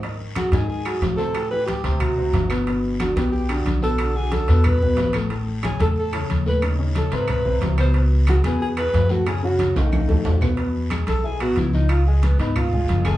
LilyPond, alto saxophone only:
\new Staff \with { instrumentName = "Alto saxophone" } { \time 4/4 \key e \major \tempo 4 = 182 r4 fis'8 gis'8 gis'4 r8 a'8~ | a'8 b'8 g'4 fis'4. r8 | r4 fis'8 g'8 g'4 r8 a'8~ | a'8 gis'8 a'4 b'4. r8 |
r4 gis'8 a'8 a'4 r8 b'8 | r4 a'8 b'8 b'4 r8 bis'8 | r4 fis'8 gis'8 gis'8 b'4 fis'8 | gis'8 fis'4 dis'2 r8 |
r4. a'8 gis'8 fis'8 e'8 dis'8 | eis'8 gis8 b8 dis'8 eis'4. gis'8 | }